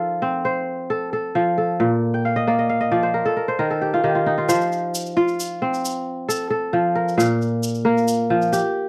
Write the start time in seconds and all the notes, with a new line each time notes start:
Already playing: F3 D#4 F4 A4 A#4 C5
0.22 C4
0.45 C5
0.90 A4
1.13 A4
1.35 F3
1.58 A4
1.80 A#2
2.14 G5
2.25 F5
2.36 D#5
2.47 A#3 D5
2.59 D#5
2.69 F5
2.81 D#5
2.91 F3 D5
3.03 C5
3.14 A#4
3.25 A4
3.37 A#4
3.48 C5
3.59 D#3 A#4
3.70 A4
3.82 G4
3.94 F4
4.04 D#3 G4
4.15 F4
4.26 D#4
4.38 F4
4.49 F3 C5, shaker
4.61 shaker
4.72 shaker
4.95 shaker
5.06 shaker
5.17 F4
5.28 shaker
5.40 shaker
5.62 C4
5.74 shaker
5.85 shaker
6.29 A4, shaker
6.50 A4
6.73 F3
6.95 A#4
7.08 shaker
7.18 A#2 F5, shaker
7.42 shaker
7.63 shaker
7.75 shaker
7.85 A#3 A#4
7.98 shaker
8.08 shaker
8.30 F3
8.42 shaker
8.53 G4, shaker